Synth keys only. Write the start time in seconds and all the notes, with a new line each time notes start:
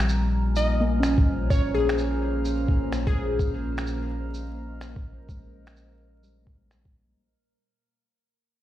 Already playing: G3
0.80 A#3
1.00 C#4
1.50 C#4
3.16 A#3
5.29 G#3
6.23 G3
6.44 A#3